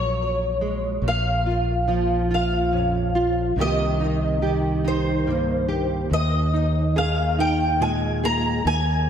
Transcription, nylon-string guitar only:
0, 0, Header, 1, 2, 480
1, 0, Start_track
1, 0, Tempo, 847458
1, 583, Time_signature, 6, 3, 24, 8
1, 5152, End_track
2, 0, Start_track
2, 0, Title_t, "Nylon-string guitar"
2, 0, Program_c, 0, 24
2, 0, Note_on_c, 0, 46, 61
2, 0, Note_on_c, 0, 54, 45
2, 0, Note_on_c, 0, 56, 46
2, 0, Note_on_c, 0, 68, 54
2, 341, Note_off_c, 0, 56, 0
2, 347, Note_on_c, 0, 56, 45
2, 551, Note_off_c, 0, 46, 0
2, 552, Note_off_c, 0, 54, 0
2, 555, Note_off_c, 0, 68, 0
2, 585, Note_off_c, 0, 56, 0
2, 585, Note_on_c, 0, 46, 54
2, 828, Note_on_c, 0, 65, 52
2, 1060, Note_off_c, 0, 65, 0
2, 1063, Note_on_c, 0, 53, 55
2, 1067, Note_on_c, 0, 65, 56
2, 1300, Note_off_c, 0, 65, 0
2, 1307, Note_on_c, 0, 65, 58
2, 1540, Note_on_c, 0, 41, 48
2, 1544, Note_on_c, 0, 61, 44
2, 1545, Note_off_c, 0, 46, 0
2, 1778, Note_off_c, 0, 65, 0
2, 1785, Note_on_c, 0, 65, 60
2, 1993, Note_off_c, 0, 41, 0
2, 1995, Note_off_c, 0, 53, 0
2, 1995, Note_off_c, 0, 61, 0
2, 1996, Note_off_c, 0, 65, 0
2, 2022, Note_on_c, 0, 48, 55
2, 2029, Note_on_c, 0, 51, 49
2, 2032, Note_on_c, 0, 58, 43
2, 2035, Note_on_c, 0, 63, 49
2, 2039, Note_on_c, 0, 67, 55
2, 2267, Note_off_c, 0, 63, 0
2, 2270, Note_on_c, 0, 63, 49
2, 2496, Note_off_c, 0, 51, 0
2, 2498, Note_off_c, 0, 67, 0
2, 2502, Note_on_c, 0, 51, 54
2, 2503, Note_off_c, 0, 48, 0
2, 2506, Note_on_c, 0, 67, 57
2, 2742, Note_off_c, 0, 63, 0
2, 2744, Note_on_c, 0, 63, 53
2, 2984, Note_off_c, 0, 58, 0
2, 2984, Note_on_c, 0, 43, 50
2, 2986, Note_on_c, 0, 58, 47
2, 3213, Note_off_c, 0, 67, 0
2, 3220, Note_on_c, 0, 67, 56
2, 3433, Note_off_c, 0, 67, 0
2, 3435, Note_off_c, 0, 43, 0
2, 3454, Note_on_c, 0, 39, 59
2, 3699, Note_off_c, 0, 63, 0
2, 3701, Note_on_c, 0, 63, 51
2, 3938, Note_off_c, 0, 51, 0
2, 3940, Note_on_c, 0, 51, 51
2, 3943, Note_on_c, 0, 68, 61
2, 3960, Note_off_c, 0, 58, 0
2, 4181, Note_off_c, 0, 63, 0
2, 4184, Note_on_c, 0, 63, 54
2, 4418, Note_on_c, 0, 46, 51
2, 4423, Note_on_c, 0, 56, 47
2, 4658, Note_off_c, 0, 68, 0
2, 4665, Note_on_c, 0, 68, 62
2, 4871, Note_off_c, 0, 46, 0
2, 4874, Note_off_c, 0, 63, 0
2, 4874, Note_off_c, 0, 68, 0
2, 4896, Note_off_c, 0, 39, 0
2, 4902, Note_on_c, 0, 39, 61
2, 5152, Note_off_c, 0, 39, 0
2, 5152, Note_off_c, 0, 51, 0
2, 5152, Note_off_c, 0, 56, 0
2, 5152, End_track
0, 0, End_of_file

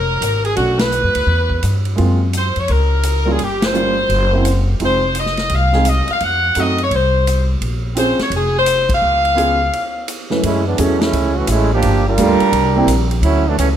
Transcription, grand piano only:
0, 0, Header, 1, 2, 480
1, 0, Start_track
1, 0, Tempo, 351700
1, 775, Time_signature, 4, 2, 24, 8
1, 18789, End_track
2, 0, Start_track
2, 0, Title_t, "Grand piano"
2, 0, Program_c, 0, 0
2, 750, Note_on_c, 0, 57, 45
2, 761, Note_on_c, 0, 61, 42
2, 769, Note_on_c, 0, 62, 42
2, 770, Note_on_c, 0, 66, 52
2, 1043, Note_off_c, 0, 57, 0
2, 1049, Note_off_c, 0, 61, 0
2, 1052, Note_off_c, 0, 62, 0
2, 1053, Note_off_c, 0, 66, 0
2, 2670, Note_on_c, 0, 56, 55
2, 2686, Note_on_c, 0, 58, 51
2, 2698, Note_on_c, 0, 60, 52
2, 2704, Note_on_c, 0, 65, 61
2, 2965, Note_off_c, 0, 56, 0
2, 2973, Note_off_c, 0, 58, 0
2, 2979, Note_off_c, 0, 60, 0
2, 2982, Note_off_c, 0, 65, 0
2, 4442, Note_on_c, 0, 55, 55
2, 4443, Note_on_c, 0, 58, 53
2, 4468, Note_on_c, 0, 61, 50
2, 4468, Note_on_c, 0, 65, 64
2, 4601, Note_off_c, 0, 55, 0
2, 4601, Note_off_c, 0, 58, 0
2, 4614, Note_off_c, 0, 61, 0
2, 4614, Note_off_c, 0, 65, 0
2, 5091, Note_on_c, 0, 55, 54
2, 5097, Note_on_c, 0, 58, 51
2, 5100, Note_on_c, 0, 61, 50
2, 5116, Note_on_c, 0, 65, 61
2, 5378, Note_off_c, 0, 55, 0
2, 5380, Note_off_c, 0, 58, 0
2, 5382, Note_off_c, 0, 61, 0
2, 5390, Note_off_c, 0, 65, 0
2, 5894, Note_on_c, 0, 58, 49
2, 5909, Note_on_c, 0, 60, 48
2, 5920, Note_on_c, 0, 61, 46
2, 5923, Note_on_c, 0, 64, 59
2, 6048, Note_off_c, 0, 58, 0
2, 6056, Note_off_c, 0, 60, 0
2, 6061, Note_off_c, 0, 61, 0
2, 6063, Note_off_c, 0, 64, 0
2, 6546, Note_on_c, 0, 56, 48
2, 6551, Note_on_c, 0, 60, 44
2, 6564, Note_on_c, 0, 63, 46
2, 6571, Note_on_c, 0, 65, 53
2, 6826, Note_off_c, 0, 56, 0
2, 6828, Note_off_c, 0, 60, 0
2, 6835, Note_off_c, 0, 63, 0
2, 6838, Note_off_c, 0, 65, 0
2, 7825, Note_on_c, 0, 56, 59
2, 7825, Note_on_c, 0, 60, 51
2, 7841, Note_on_c, 0, 63, 53
2, 7844, Note_on_c, 0, 68, 68
2, 7974, Note_off_c, 0, 56, 0
2, 7974, Note_off_c, 0, 60, 0
2, 7982, Note_off_c, 0, 63, 0
2, 7984, Note_off_c, 0, 68, 0
2, 8962, Note_on_c, 0, 57, 56
2, 8968, Note_on_c, 0, 60, 52
2, 8975, Note_on_c, 0, 63, 54
2, 8980, Note_on_c, 0, 66, 61
2, 9235, Note_off_c, 0, 57, 0
2, 9238, Note_off_c, 0, 60, 0
2, 9241, Note_off_c, 0, 63, 0
2, 9244, Note_off_c, 0, 66, 0
2, 10850, Note_on_c, 0, 60, 59
2, 10869, Note_on_c, 0, 61, 54
2, 10871, Note_on_c, 0, 65, 53
2, 10884, Note_on_c, 0, 68, 63
2, 11139, Note_off_c, 0, 60, 0
2, 11149, Note_off_c, 0, 61, 0
2, 11150, Note_off_c, 0, 65, 0
2, 11156, Note_off_c, 0, 68, 0
2, 12756, Note_on_c, 0, 59, 60
2, 12772, Note_on_c, 0, 61, 51
2, 12786, Note_on_c, 0, 65, 52
2, 12792, Note_on_c, 0, 68, 67
2, 13052, Note_off_c, 0, 59, 0
2, 13060, Note_off_c, 0, 61, 0
2, 13067, Note_off_c, 0, 65, 0
2, 13070, Note_off_c, 0, 68, 0
2, 14057, Note_on_c, 0, 42, 52
2, 14065, Note_on_c, 0, 57, 48
2, 14071, Note_on_c, 0, 61, 48
2, 14073, Note_on_c, 0, 64, 48
2, 14083, Note_on_c, 0, 71, 58
2, 14210, Note_off_c, 0, 42, 0
2, 14214, Note_off_c, 0, 57, 0
2, 14218, Note_off_c, 0, 61, 0
2, 14218, Note_off_c, 0, 64, 0
2, 14224, Note_off_c, 0, 71, 0
2, 14705, Note_on_c, 0, 54, 53
2, 14714, Note_on_c, 0, 57, 51
2, 14719, Note_on_c, 0, 61, 48
2, 14729, Note_on_c, 0, 64, 49
2, 14732, Note_on_c, 0, 68, 57
2, 14985, Note_off_c, 0, 54, 0
2, 14990, Note_off_c, 0, 57, 0
2, 14992, Note_off_c, 0, 61, 0
2, 14997, Note_off_c, 0, 64, 0
2, 14999, Note_off_c, 0, 68, 0
2, 16623, Note_on_c, 0, 55, 62
2, 16625, Note_on_c, 0, 58, 51
2, 16630, Note_on_c, 0, 62, 54
2, 16639, Note_on_c, 0, 65, 53
2, 16649, Note_on_c, 0, 69, 64
2, 16902, Note_off_c, 0, 55, 0
2, 16903, Note_off_c, 0, 58, 0
2, 16906, Note_off_c, 0, 62, 0
2, 16910, Note_off_c, 0, 65, 0
2, 16915, Note_off_c, 0, 69, 0
2, 17408, Note_on_c, 0, 58, 67
2, 17422, Note_on_c, 0, 60, 68
2, 17427, Note_on_c, 0, 62, 63
2, 17427, Note_on_c, 0, 64, 66
2, 17445, Note_on_c, 0, 67, 79
2, 17563, Note_off_c, 0, 58, 0
2, 17569, Note_off_c, 0, 60, 0
2, 17572, Note_off_c, 0, 62, 0
2, 17572, Note_off_c, 0, 64, 0
2, 17581, Note_off_c, 0, 67, 0
2, 18789, End_track
0, 0, End_of_file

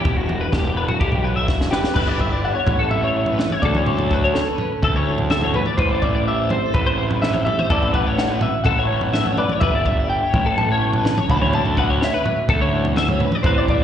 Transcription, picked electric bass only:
0, 0, Header, 1, 2, 480
1, 0, Start_track
1, 0, Key_signature, 2, "major"
1, 0, Tempo, 478469
1, 48, Time_signature, 4, 2, 24, 8
1, 13883, End_track
2, 0, Start_track
2, 0, Title_t, "Picked electric bass"
2, 0, Program_c, 0, 34
2, 52, Note_on_c, 0, 28, 93
2, 423, Note_off_c, 0, 28, 0
2, 537, Note_on_c, 0, 28, 87
2, 906, Note_off_c, 0, 28, 0
2, 1008, Note_on_c, 0, 35, 70
2, 1496, Note_off_c, 0, 35, 0
2, 1496, Note_on_c, 0, 28, 73
2, 1865, Note_off_c, 0, 28, 0
2, 1964, Note_on_c, 0, 31, 101
2, 2524, Note_off_c, 0, 31, 0
2, 2682, Note_on_c, 0, 33, 91
2, 3428, Note_off_c, 0, 33, 0
2, 3644, Note_on_c, 0, 38, 86
2, 4390, Note_off_c, 0, 38, 0
2, 4845, Note_on_c, 0, 38, 88
2, 5590, Note_off_c, 0, 38, 0
2, 5806, Note_on_c, 0, 33, 102
2, 6551, Note_off_c, 0, 33, 0
2, 6767, Note_on_c, 0, 33, 86
2, 7512, Note_off_c, 0, 33, 0
2, 7731, Note_on_c, 0, 33, 102
2, 8474, Note_off_c, 0, 33, 0
2, 8686, Note_on_c, 0, 33, 84
2, 9431, Note_off_c, 0, 33, 0
2, 9650, Note_on_c, 0, 31, 96
2, 10207, Note_off_c, 0, 31, 0
2, 10380, Note_on_c, 0, 33, 89
2, 11119, Note_off_c, 0, 33, 0
2, 11333, Note_on_c, 0, 38, 94
2, 12075, Note_off_c, 0, 38, 0
2, 12528, Note_on_c, 0, 38, 90
2, 13272, Note_off_c, 0, 38, 0
2, 13486, Note_on_c, 0, 33, 102
2, 13883, Note_off_c, 0, 33, 0
2, 13883, End_track
0, 0, End_of_file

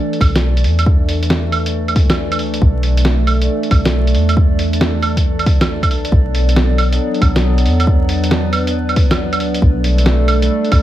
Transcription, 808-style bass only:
0, 0, Header, 1, 2, 480
1, 0, Start_track
1, 0, Tempo, 437956
1, 949, Time_signature, 4, 2, 24, 8
1, 11862, End_track
2, 0, Start_track
2, 0, Title_t, "808-style bass"
2, 0, Program_c, 0, 38
2, 228, Note_on_c, 0, 35, 82
2, 709, Note_on_c, 0, 40, 79
2, 726, Note_off_c, 0, 35, 0
2, 2627, Note_on_c, 0, 38, 80
2, 2643, Note_off_c, 0, 40, 0
2, 2855, Note_off_c, 0, 38, 0
2, 2868, Note_on_c, 0, 35, 98
2, 3818, Note_off_c, 0, 35, 0
2, 4068, Note_on_c, 0, 35, 82
2, 4548, Note_on_c, 0, 40, 77
2, 4565, Note_off_c, 0, 35, 0
2, 6472, Note_on_c, 0, 38, 81
2, 6489, Note_off_c, 0, 40, 0
2, 6698, Note_off_c, 0, 38, 0
2, 6707, Note_on_c, 0, 35, 98
2, 7658, Note_off_c, 0, 35, 0
2, 7909, Note_on_c, 0, 35, 82
2, 8394, Note_on_c, 0, 40, 77
2, 8410, Note_off_c, 0, 35, 0
2, 10309, Note_on_c, 0, 38, 81
2, 10325, Note_off_c, 0, 40, 0
2, 10536, Note_off_c, 0, 38, 0
2, 10545, Note_on_c, 0, 35, 99
2, 11496, Note_off_c, 0, 35, 0
2, 11748, Note_on_c, 0, 35, 85
2, 11862, Note_off_c, 0, 35, 0
2, 11862, End_track
0, 0, End_of_file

